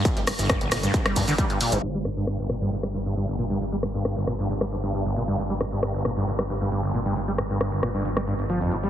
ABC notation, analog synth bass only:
X:1
M:4/4
L:1/16
Q:1/4=135
K:Gm
V:1 name="Analog synth bass" clef=bass
z G,,, z G,,, z B,,, G,,, z2 G,,, G,, z4 G,,, | G,,,16- | G,,,16- | G,,,16- |
G,,,16 |]